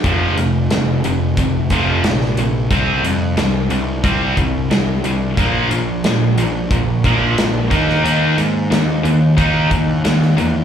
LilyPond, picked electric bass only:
\new Staff \with { instrumentName = "Picked electric bass" } { \clef bass \time 4/4 \key ees \major \tempo 4 = 90 f,,8 f,,8 f,,8 f,,8 f,,8 f,,8 bes,,4 | c,8 f,8 c,8 c,8 c,8 c,8 c,8 c,8 | bes,,8 bes,,8 bes,,8 bes,,8 bes,,8 bes,,8 bes,,8 ees,8 | ees,8 aes,8 ees,8 ees,8 ees,8 ees,8 ees,8 e,8 | }